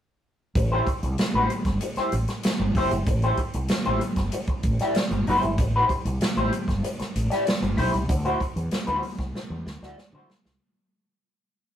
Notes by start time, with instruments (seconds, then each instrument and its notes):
0.55 fretless electric bass A1, muted clean electric guitar stroke, kick, closed hi-hat
0.72 clean electric guitar E4 G4 C5
0.87 muted clean electric guitar stroke, kick, closed hi-hat
1.03 fretless electric bass C2, muted clean electric guitar stroke, closed hi-hat
1.18 muted fretless electric bass stroke, muted clean electric guitar stroke, snare, closed hi-hat
1.34 fretless electric bass A1, clean electric guitar E4 G4 C5
1.50 muted clean electric guitar stroke, closed hi-hat
1.65 fretless electric bass G1, muted clean electric guitar stroke, kick, snare, closed hi-hat
1.81 muted clean electric guitar stroke, closed hi-hat
1.96 clean electric guitar E4 G4 C5, muted fretless electric bass stroke, snare, closed hi-hat
2.12 fretless electric bass A1, muted clean electric guitar stroke, closed hi-hat
2.28 muted clean electric guitar stroke, snare, closed hi-hat
2.43 muted clean electric guitar stroke, snare, closed hi-hat
2.59 fretless electric bass G1, muted clean electric guitar stroke
2.75 fretless electric bass F#1, clean electric guitar E4 G4 C5, kick, open hi-hat
2.91 fretless electric bass G1, muted clean electric guitar stroke, closed hi-hat
3.06 fretless electric bass A1, muted clean electric guitar stroke, kick, closed hi-hat
3.22 clean electric guitar E4 G4 C5, closed hi-hat
3.37 muted clean electric guitar stroke, kick, closed hi-hat
3.54 fretless electric bass C2, muted clean electric guitar stroke, closed hi-hat
3.68 muted fretless electric bass stroke, muted clean electric guitar stroke, snare, closed hi-hat
3.85 fretless electric bass A1, clean electric guitar E4 G4 C5, closed hi-hat
4.01 muted clean electric guitar stroke, closed hi-hat
4.16 fretless electric bass G1, muted clean electric guitar stroke, kick, snare, closed hi-hat
4.32 muted clean electric guitar stroke, closed hi-hat
4.47 muted fretless electric bass stroke, muted clean electric guitar stroke, kick, closed hi-hat
4.63 fretless electric bass A1, kick, closed hi-hat
4.79 clean electric guitar E4 G4 D5, snare, closed hi-hat
4.95 muted clean electric guitar stroke, snare, closed hi-hat
5.11 fretless electric bass G1, muted clean electric guitar stroke, closed hi-hat
5.27 fretless electric bass F#1, clean electric guitar E4 G4 C5, open hi-hat
5.43 fretless electric bass G1, muted clean electric guitar stroke, closed hi-hat
5.58 fretless electric bass A1, muted clean electric guitar stroke, kick, closed hi-hat
5.76 clean electric guitar E4 G4 C5
5.89 muted clean electric guitar stroke, kick, closed hi-hat
6.05 fretless electric bass C2, muted clean electric guitar stroke, closed hi-hat
6.21 muted clean electric guitar stroke, muted fretless electric bass stroke, snare, closed hi-hat
6.37 fretless electric bass A1, clean electric guitar E4 G4 C5, closed hi-hat
6.53 muted clean electric guitar stroke, closed hi-hat
6.68 fretless electric bass G1, muted clean electric guitar stroke, kick, snare, closed hi-hat
6.83 muted clean electric guitar stroke, closed hi-hat
6.99 muted fretless electric bass stroke, muted clean electric guitar stroke, snare, closed hi-hat
7.16 fretless electric bass A1, closed hi-hat
7.30 clean electric guitar E4 G4 D5, snare, closed hi-hat
7.46 muted clean electric guitar stroke, snare, closed hi-hat
7.61 fretless electric bass G1, muted clean electric guitar stroke, closed hi-hat
7.77 fretless electric bass B1, clean electric guitar E4 G4 C5, kick, open hi-hat
7.93 fretless electric bass C2, muted clean electric guitar stroke, closed hi-hat
8.09 fretless electric bass D2, muted clean electric guitar stroke, kick, closed hi-hat
8.25 clean electric guitar E4 F#4 C5, closed hi-hat
8.40 muted clean electric guitar stroke, kick, closed hi-hat
8.56 fretless electric bass E2, muted clean electric guitar stroke, closed hi-hat
8.71 muted fretless electric bass stroke, muted clean electric guitar stroke, snare, closed hi-hat
8.87 fretless electric bass D2, clean electric guitar E4 F#4 C5, closed hi-hat
9.03 muted clean electric guitar stroke, open hi-hat
9.18 fretless electric bass C2, muted clean electric guitar stroke, kick, snare, closed hi-hat
9.35 muted clean electric guitar stroke, snare
9.50 fretless electric bass E2, muted clean electric guitar stroke
9.66 fretless electric bass D2, snare
9.82 fretless electric bass D2, clean electric guitar E4 F#4 D5, snare
9.98 muted clean electric guitar stroke, snare
10.13 fretless electric bass D3, clean electric guitar E4 F#4 C5
10.30 muted clean electric guitar stroke, snare
10.45 fretless electric bass C2, muted clean electric guitar stroke, snare